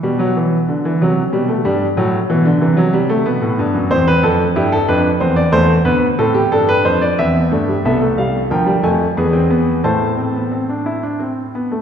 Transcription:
<<
  \new Staff \with { instrumentName = "Grand piano" } { \time 3/4 \key c \major \tempo 4 = 92 << { r2. | r2. | r2. | r2. |
\key a \minor e''8 f''8 g''8 gis''4. | a''2~ a''8 r8 | } \\ { r2. | r2. | c''16 b'16 a'8 g'16 a'16 b'8 c''16 d''16 c''8 | b'8 a'16 g'16 a'16 b'16 c''16 d''16 e''4 |
a'4 bes'4 gis'4 | c''2~ c''8 r8 | } >> }
  \new Staff \with { instrumentName = "Grand piano" } { \clef bass \time 3/4 \key c \major << { g16 fis16 e8 d16 e16 fis8 g16 a16 g8 | fis8 e16 d16 e16 fis16 g16 a16 b4 | c'4 e'8 d'8 c'8 a8 | b8 c'8 d'4 c'16 b16 a16 g16 |
\key a \minor b16 a16 g8 f16 g16 a8 b16 c'16 b8 | a8 c'16 b16 c'16 d'16 e'16 d'16 c'8 b16 a16 | } \\ { b,4 r8 c8 b,8 g,8 | a,8 b,8 c4 b,16 a,16 g,16 fis,16 | e,8 f,8 g,8 f,8 e,8 e,8 | d,8 a,8 g,8 f,8 e,8 g,8 |
c,4 d,8 f,8 e,4 | a,2~ a,8 r8 | } >> }
>>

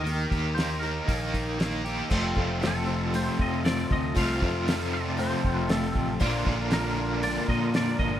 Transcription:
<<
  \new Staff \with { instrumentName = "Clean electric guitar" } { \time 4/4 \key f \mixolydian \tempo 4 = 117 bes'4 c''8 bes'8 g'4. r8 | r4 a'4 c''8 ees''8 d''8 ees''8 | f''4. d''8 c''4 a'8. r16 | r4 bes'4 d''8 ees''8 d''8 ees''8 | }
  \new Staff \with { instrumentName = "Accordion" } { \time 4/4 \key f \mixolydian r1 | <a c' f' a'>1~ | <a c' f' a'>1 | <bes d' f' bes'>1 | }
  \new Staff \with { instrumentName = "Overdriven electric guitar" } { \time 4/4 \key f \mixolydian ees8 g'8 bes8 ees'8 bes8 ees8 bes8 g'8 | <f, c f a c' f'>1 | <f, c f a c' f'>1 | <bes, d bes d' f'>1 | }
  \new Staff \with { instrumentName = "Twelve-string acoustic guitar" } { \time 4/4 \key f \mixolydian <ees bes ees' g'>4 <ees bes ees' g'>8 <bes ees' g'>8 <ees bes ees' g'>4 <ees bes ees' g'>8 <bes ees' g'>8 | <f, c f a c' f'>8 <f a c' f'>8 <f a c' f'>8 <f a c' f'>8 <f, c f a c' f'>4 <f a c' f'>8 <f a c' f'>8 | <f, c f a c' f'>8 <f a c' f'>8 <f a c' f'>4 <f, c f a c' f'>4 <f a c' f'>4 | <bes, f bes d' f'>8 <bes d' f'>8 <f bes d' f'>8 <bes d' f'>8 <bes, f bes d' f'>4 <f bes d' f'>4 | }
  \new Staff \with { instrumentName = "Fingered electric bass" } { \clef bass \time 4/4 \key f \mixolydian ees,8 ees,4. bes,,2 | f,,8 f,,2 f,4 d,8 | c,8 f,2 f,,4 a,,8 | bes,,8 bes,,2 bes,4 g,,8 | }
  \new DrumStaff \with { instrumentName = "Drums" } \drummode { \time 4/4 hho8 <hho bd>8 <hho sn>8 hho8 <hho bd>8 <hho bd>8 <hho sn>8 hho8 | <cymc bd>8 bd8 <hho sn>4 hho8 bd8 <hho sn>8 bd8 | <hho bd>8 bd8 <hho sn>4 hho8 bd8 <hho sn>8 bd8 | <hho bd>8 bd8 <hho sn>4 hho8 bd8 <hho sn>8 bd8 | }
>>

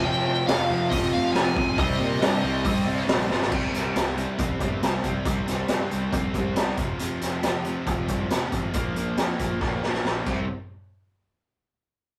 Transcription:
<<
  \new Staff \with { instrumentName = "Lead electric guitar" } { \time 4/4 \key f \minor \tempo 4 = 138 g''8 g''8 f''4 ees''8 f''8 aes''4 | ees''2. r4 | r1 | r1 |
r1 | r1 | r1 | }
  \new Staff \with { instrumentName = "Distorted electric guitar" } { \clef bass \time 4/4 \key f \minor <f, c f>8 <f, c f>8 <f, c f>8 <f, c f>8 <f, c f>8 <f, c f>8 <f, c f>8 <f, c f>8 | <c g c'>8 <c g c'>8 <c g c'>8 <c g c'>8 <c g c'>8 <c g c'>8 <c g c'>8 <c g c'>8 | <c g c'>8 <c g c'>8 <c g c'>8 <c g c'>8 <c g c'>8 <c g c'>8 <c g c'>8 <c g c'>8 | <c g c'>8 <c g c'>8 <c g c'>8 <c g c'>8 <c g c'>8 <c g c'>8 <c g c'>8 <f, c f>8 |
<f, c f>8 <f, c f>8 <f, c f>8 <f, c f>8 <f, c f>8 <f, c f>8 <f, c f>8 <f, c f>8 | <bes, f bes>8 <bes, f bes>8 <bes, f bes>8 <bes, f bes>8 <bes, f bes>8 <bes, f bes>8 <bes, f bes>8 <c g c'>8 | r1 | }
  \new Staff \with { instrumentName = "Distorted electric guitar" } { \clef bass \time 4/4 \key f \minor <f, c f>8 <f, c f>8 <f, c f>8 <f, c f>8 <f, c f>8 <f, c f>8 <f, c f>8 <f, c f>8 | <c g c'>8 <c g c'>8 <c g c'>8 <c g c'>8 <c g c'>8 <c g c'>8 <c g c'>8 <c g c'>8 | <c g c'>8 <c g c'>8 <c g c'>8 <c g c'>8 <c g c'>8 <c g c'>8 <c g c'>8 <c g c'>8 | <c g c'>8 <c g c'>8 <c g c'>8 <c g c'>8 <c g c'>8 <c g c'>8 <c g c'>8 <f, c f>8 |
<f, c f>8 <f, c f>8 <f, c f>8 <f, c f>8 <f, c f>8 <f, c f>8 <f, c f>8 <f, c f>8 | <bes, f bes>8 <bes, f bes>8 <bes, f bes>8 <bes, f bes>8 <bes, f bes>8 <bes, f bes>8 <bes, f bes>8 <c g c'>8 | r1 | }
  \new Staff \with { instrumentName = "Overdriven electric guitar" } { \clef bass \time 4/4 \key f \minor <f, c f>4 <f, c f>2~ <f, c f>8 r8 | <c g c'>4. <c g c'>2~ <c g c'>8 | r1 | r1 |
r1 | r1 | r1 | }
  \new Staff \with { instrumentName = "Picked electric bass" } { \clef bass \time 4/4 \key f \minor f,,4 f,,8 f,,8 f,,8 f,,8 f,,8 b,,8 | c,8 bes,8 g,8 c,8 c,4 bes,,8 g,,8 | c,8 c,8 c,4 c,8 g,,8 c,8 c,8 | c,8 c,8 g,8 c,8 c,8 c,8 c,8 f,,8 |
f,,8 f,,8 f,,4 f,,8 c,8 f,,8 aes,,8 | bes,,8 bes,,8 f,8 bes,,8 bes,,8 bes,,8 bes,,8 c,8 | r1 | }
  \new DrumStaff \with { instrumentName = "Drums" } \drummode { \time 4/4 r4 <hho sn>4 <hho bd>4 <hho sn>8 bd8 | <hho bd>4 <hho sn>4 <hho bd>4 <hho sn>8 sn16 sn16 | <cymc bd>8 <hh sn>8 <hh sn>8 hh8 <hh bd>8 <hh bd>8 <hh sn>8 <hh bd>8 | <hh bd>8 <hh sn>8 <hh sn>8 hh8 <hh bd>8 <hh bd>8 <hh sn>8 <hh bd>8 |
hh8 <hh sn>8 <hh sn>8 hh8 <hh bd>8 <hh bd>8 <hh sn>8 <hh bd>8 | <hh bd>8 hh8 <hh sn>8 <hh bd>8 <bd sn>8 sn16 sn16 sn8 <cymc bd>8 | r4 r4 r4 r4 | }
>>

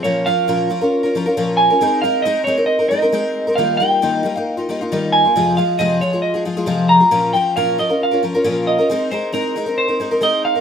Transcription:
<<
  \new Staff \with { instrumentName = "Clean electric guitar" } { \time 4/4 \key bes \dorian \tempo 4 = 136 des''8 f''2. aes''8~ | aes''8 f''8 ees''8 des''8 ees''8 ees''4. | f''8 g''2. aes''8~ | aes''8 f''8 ees''8 des''8 ees''8 r4 bes''8~ |
bes''8 g''8 f''8 ees''8 f''8 r4 ees''8~ | ees''8 c''8 bes'4 c''4 ees''8 f''8 | }
  \new Staff \with { instrumentName = "Twelve-string acoustic guitar" } { \time 4/4 \key bes \dorian <bes, f des' f' bes'>8 <f des' f' bes'>8 <bes, f des' f' bes'>8 <f des' f' bes'>16 <des' f' bes'>8 <des' f' bes'>16 <f des' f' bes'>16 <des' f' bes'>16 <bes, f des' f' bes'>8. <des' f' bes'>16 | <aes c' ees' bes'>8 <aes c' ees' bes'>8 <aes c' ees' bes'>8 <aes c' ees' bes'>16 <c' ees' bes'>8 <c' ees' bes'>16 <aes c' ees' bes'>16 <c' ees' bes'>16 <aes c' ees' bes'>8. <c' ees' bes'>16 | <ees g bes ees' f'>8 <g bes ees' f'>8 <ees g bes ees' f'>8 <g bes ees' f'>16 <bes ees' f'>8 <bes ees' f'>16 <g bes ees' f'>16 <bes ees' f'>16 <ees g bes ees' f'>8. <bes ees' f'>16 | <f, c f aes f' aes'>8 <f aes f' aes'>8 <f, c f aes f' aes'>8 <f aes f' aes'>16 <f aes f' aes'>8 <f aes f' aes'>16 <f aes f' aes'>16 <f aes f' aes'>16 <f, c f aes f' aes'>8. <f aes f' aes'>16 |
<bes, f des' f' bes'>8 <f des' f' bes'>8 <bes, f des' f' bes'>8 <f des' f' bes'>16 <des' f' bes'>8 <des' f' bes'>16 <f des' f' bes'>16 <des' f' bes'>16 <bes, f des' f' bes'>8. <des' f' bes'>16 | <aes c' ees' bes'>8 <aes c' ees' bes'>8 <aes c' ees' bes'>8 <aes c' ees' bes'>16 <c' ees' bes'>8 <c' ees' bes'>16 <aes c' ees' bes'>16 <c' ees' bes'>16 <aes c' ees' bes'>8. <ees' bes'>16 | }
>>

